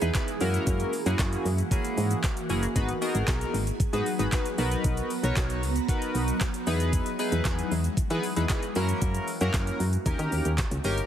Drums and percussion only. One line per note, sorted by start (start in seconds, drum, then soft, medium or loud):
0.02 closed hi-hat medium
0.02 shaker medium
0.15 kick loud
0.15 snare medium
0.15 clap loud
0.15 clap medium
0.15 closed hi-hat medium
0.15 shaker medium
0.28 closed hi-hat medium
0.28 shaker medium
0.41 open hi-hat medium
0.41 shaker medium
0.54 closed hi-hat medium
0.54 shaker medium
0.67 kick loud
0.67 closed hi-hat medium
0.67 shaker medium
0.80 closed hi-hat soft
0.80 shaker soft
0.93 open hi-hat medium
0.93 shaker medium
1.06 closed hi-hat medium
1.06 shaker medium
1.19 kick loud
1.19 snare medium
1.19 clap loud
1.19 closed hi-hat medium
1.19 shaker medium
1.33 closed hi-hat medium
1.33 shaker medium
1.46 open hi-hat medium
1.46 shaker medium
1.58 closed hi-hat soft
1.58 shaker medium
1.71 kick loud
1.71 closed hi-hat medium
1.71 shaker medium
1.85 closed hi-hat medium
1.85 shaker medium
1.98 open hi-hat medium
1.98 shaker medium
2.11 closed hi-hat medium
2.11 shaker medium
2.24 kick loud
2.24 snare medium
2.24 clap medium
2.24 clap loud
2.24 closed hi-hat medium
2.24 shaker medium
2.37 closed hi-hat medium
2.37 shaker medium
2.50 open hi-hat medium
2.50 shaker medium
2.63 closed hi-hat medium
2.63 shaker medium
2.76 kick loud
2.76 closed hi-hat medium
2.76 shaker medium
2.89 closed hi-hat medium
2.89 shaker medium
3.02 open hi-hat medium
3.02 shaker medium
3.15 closed hi-hat medium
3.15 shaker medium
3.28 kick loud
3.28 snare loud
3.28 clap loud
3.28 closed hi-hat medium
3.28 shaker medium
3.41 closed hi-hat medium
3.41 shaker medium
3.54 open hi-hat medium
3.54 shaker medium
3.67 closed hi-hat soft
3.67 shaker medium
3.80 kick loud
3.80 closed hi-hat medium
3.80 shaker medium
3.93 closed hi-hat medium
3.93 shaker medium
4.06 open hi-hat medium
4.06 shaker medium
4.19 closed hi-hat medium
4.19 shaker medium
4.32 kick loud
4.32 snare medium
4.32 clap loud
4.32 clap medium
4.32 closed hi-hat medium
4.32 shaker medium
4.46 closed hi-hat medium
4.46 shaker medium
4.58 open hi-hat medium
4.58 shaker medium
4.72 closed hi-hat medium
4.72 shaker medium
4.84 kick loud
4.84 closed hi-hat medium
4.84 shaker medium
4.97 closed hi-hat medium
4.97 shaker medium
5.10 open hi-hat medium
5.10 shaker medium
5.24 closed hi-hat medium
5.24 shaker medium
5.36 kick loud
5.36 snare medium
5.36 clap loud
5.36 clap medium
5.36 closed hi-hat medium
5.36 shaker medium
5.50 closed hi-hat medium
5.50 shaker medium
5.63 open hi-hat medium
5.63 shaker medium
5.76 closed hi-hat soft
5.76 shaker medium
5.89 kick loud
5.89 closed hi-hat medium
5.89 shaker medium
6.02 closed hi-hat medium
6.02 shaker medium
6.15 open hi-hat medium
6.15 shaker medium
6.28 closed hi-hat medium
6.28 shaker medium
6.41 kick loud
6.41 snare medium
6.41 clap loud
6.41 clap medium
6.41 closed hi-hat medium
6.41 shaker medium
6.54 closed hi-hat medium
6.54 shaker medium
6.67 open hi-hat medium
6.67 shaker medium
6.80 closed hi-hat medium
6.80 shaker medium
6.93 kick loud
6.93 closed hi-hat medium
6.93 shaker loud
7.06 closed hi-hat medium
7.06 shaker soft
7.19 open hi-hat medium
7.19 shaker medium
7.32 closed hi-hat medium
7.32 shaker medium
7.45 kick loud
7.45 snare medium
7.45 clap loud
7.45 closed hi-hat medium
7.45 shaker medium
7.59 closed hi-hat medium
7.59 shaker medium
7.72 open hi-hat medium
7.72 shaker medium
7.84 closed hi-hat soft
7.84 shaker medium
7.97 kick loud
7.97 closed hi-hat medium
7.97 shaker medium
8.10 closed hi-hat medium
8.10 shaker medium
8.23 open hi-hat medium
8.23 shaker medium
8.36 closed hi-hat medium
8.36 shaker medium
8.49 kick loud
8.49 snare medium
8.49 clap loud
8.49 clap medium
8.49 closed hi-hat medium
8.49 shaker medium
8.63 closed hi-hat medium
8.63 shaker medium
8.75 open hi-hat medium
8.75 shaker medium
8.89 closed hi-hat medium
8.89 shaker medium
9.02 kick loud
9.02 closed hi-hat medium
9.02 shaker medium
9.15 closed hi-hat medium
9.15 shaker medium
9.28 open hi-hat medium
9.28 shaker medium
9.41 closed hi-hat medium
9.41 shaker medium
9.54 kick loud
9.54 snare medium
9.54 clap loud
9.54 closed hi-hat medium
9.54 shaker medium
9.67 closed hi-hat medium
9.67 shaker medium
9.80 open hi-hat medium
9.80 shaker medium
9.93 closed hi-hat soft
9.93 shaker medium
10.06 kick loud
10.06 closed hi-hat medium
10.06 shaker medium
10.19 closed hi-hat medium
10.19 shaker medium
10.32 open hi-hat medium
10.32 shaker medium
10.45 closed hi-hat medium
10.45 shaker medium
10.58 kick loud
10.58 snare medium
10.58 clap loud
10.58 clap medium
10.58 closed hi-hat medium
10.58 shaker medium
10.71 closed hi-hat medium
10.71 shaker medium
10.84 open hi-hat medium
10.84 shaker medium
10.98 closed hi-hat medium
10.98 shaker medium